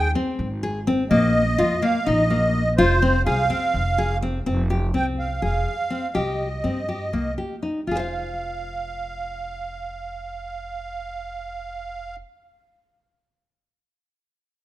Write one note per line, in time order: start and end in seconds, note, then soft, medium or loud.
0.00 0.13 D#2 medium
0.00 0.11 G5 loud
0.15 0.47 C4 medium
0.39 1.07 G#1 medium
0.63 0.79 G#4 medium
0.87 1.03 C4 medium
1.10 1.55 A#1 medium
1.10 1.43 A#3 medium
1.10 1.85 D#5 loud
1.58 1.81 F2 medium
1.58 1.75 F4 medium
1.82 1.98 A#3 medium
1.82 2.07 F5 medium
2.05 2.75 A#1 medium
2.05 2.23 D#4 medium
2.05 2.74 D#5 loud
2.30 2.62 A#3 medium
2.77 3.22 F1 medium
2.77 2.94 F4 loud
2.77 3.22 C5 medium
3.02 3.18 C4 medium
3.25 3.48 C2 medium
3.25 3.42 G#4 medium
3.25 4.18 F5 loud
3.50 3.82 C4 medium
3.74 4.42 F1 medium
3.98 4.14 G#4 medium
4.22 4.38 C4 medium
4.46 4.90 F1 medium
4.46 4.62 C4 medium
4.70 4.86 G4 medium
4.94 5.38 C2 medium
4.94 5.26 C4 medium
4.94 5.06 G5 medium
5.19 5.42 F5 medium
5.42 5.64 F1 medium
5.42 5.74 G#4 medium
5.42 6.18 F5 medium
5.90 6.07 C4 medium
6.15 6.60 C2 medium
6.15 6.47 G4 medium
6.15 7.34 D#5 medium
6.64 7.09 G2 medium
6.64 6.80 C4 medium
6.89 7.05 G4 medium
7.13 7.36 C2 medium
7.13 7.30 A#3 medium
7.38 7.55 G4 soft
7.63 7.79 D#4 medium
7.87 12.20 F1 medium
7.87 12.20 F4 soft
7.87 12.16 F5 medium
7.91 7.99 G#4 soft
7.96 12.28 C5 soft
7.96 12.32 F5 soft